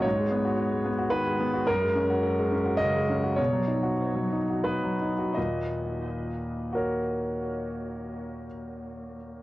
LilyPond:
<<
  \new Staff \with { instrumentName = "Grand piano" } { \time 3/4 \key ees \minor \tempo 4 = 91 << { des''2 ces''4 | bes'2 ees''4 | des''2 b'4 | ees''2.~ |
ees''2. | } \\ { r2. | r2. | r2. | r2 <ges' bes' des''>4~ |
<ges' bes' des''>2. | } >> }
  \new Staff \with { instrumentName = "Grand piano" } { \time 3/4 \key ees \minor aes,16 aes16 ces'16 ges'8 aes16 ces'16 ges'16 ees16 aes16 ces'16 ges'16 | ges,16 aes16 des'16 ges'8 aes16 des'16 ges'16 des16 aes16 des'16 ges'16 | b,16 fis16 dis'16 fis'8 fis16 dis'16 fis'16 b16 fis16 dis'16 fis'16 | <ees, bes,>2.~ |
<ees, bes,>2. | }
>>